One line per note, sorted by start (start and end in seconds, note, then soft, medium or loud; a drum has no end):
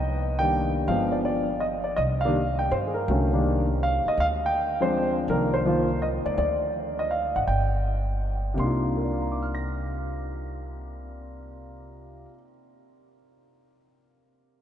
0.00 0.84 C2 medium
0.00 0.41 D#5 medium
0.39 0.86 D#3 medium
0.39 0.86 G3 soft
0.39 0.86 A#3 soft
0.39 0.87 D4 medium
0.39 0.73 G5 medium
0.88 1.94 G1 medium
0.88 1.45 F3 medium
0.88 1.45 G#3 soft
0.88 1.45 B3 medium
0.88 1.46 D4 medium
0.88 1.13 F5 medium
1.12 1.17 D5 medium
1.25 1.63 D5 medium
1.60 1.66 D#5 medium
1.84 1.98 D5 medium
1.96 2.68 C2 medium
1.96 2.02 D#5 medium
2.21 2.35 D#3 medium
2.21 2.35 G3 medium
2.21 2.56 F5 medium
2.25 2.35 A#3 medium
2.25 2.36 D4 medium
2.59 2.72 G5 medium
2.71 3.06 G2 medium
2.71 2.77 C5 medium
2.87 2.96 G#4 medium
2.94 3.77 A#4 medium
3.08 4.02 C2 medium
3.08 3.31 D3 medium
3.08 3.31 F#3 medium
3.08 3.31 A3 medium
3.08 3.31 C#4 medium
3.33 3.65 D#3 medium
3.33 3.65 G3 medium
3.33 3.65 A#3 medium
3.33 3.65 D4 medium
3.83 4.07 F5 medium
4.05 4.20 D#5 medium
4.05 muted upright bass stroke soft
4.17 5.24 D2 medium
4.17 4.26 F5 loud
4.46 4.82 G5 medium
4.80 5.27 F3 medium
4.80 5.27 G#3 medium
4.80 5.27 C4 medium
4.80 5.27 D4 medium
4.80 5.15 C5 medium
5.28 6.22 C2 medium
5.28 5.64 D#3 medium
5.28 5.64 F3 soft
5.28 5.65 A#3 soft
5.28 5.65 D4 medium
5.28 5.52 A#4 medium
5.54 5.99 C5 medium
5.66 5.87 D#3 medium
5.66 5.87 F3 medium
5.66 5.87 A#3 medium
5.66 5.88 F4 medium
6.02 6.07 D#5 medium
6.26 6.37 C#2 medium
6.26 6.37 D5 medium
6.38 7.32 D2 medium
6.38 6.72 D5 medium
6.99 7.12 D#5 medium
7.11 7.34 F5 medium
7.36 7.47 G#1 medium
7.36 7.41 F#5 medium
7.47 8.54 G1 medium
7.47 8.42 G5 medium
8.54 12.25 C2 medium
8.54 12.27 C3 medium
8.54 12.28 A#3 medium
8.59 12.30 D4 soft
8.59 12.31 D#4 soft
8.59 12.26 C6 medium
8.66 12.33 F4 medium
8.97 12.26 A#4 soft
9.05 12.30 D5 soft
9.13 12.34 F5 soft
9.22 12.38 A#5 soft
9.32 12.43 D6 soft
9.42 12.49 F6 soft
9.55 12.55 A#6 soft